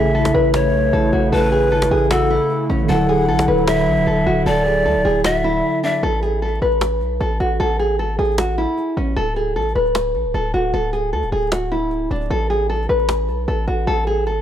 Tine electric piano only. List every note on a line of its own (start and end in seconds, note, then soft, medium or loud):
0.00 2.83 C#3 medium
0.00 2.85 A3 medium
0.00 2.86 E4 medium
0.00 2.88 A4 medium
2.85 5.97 D3 medium
2.85 5.98 F#3 medium
2.92 6.00 E4 medium
2.92 6.02 A4 medium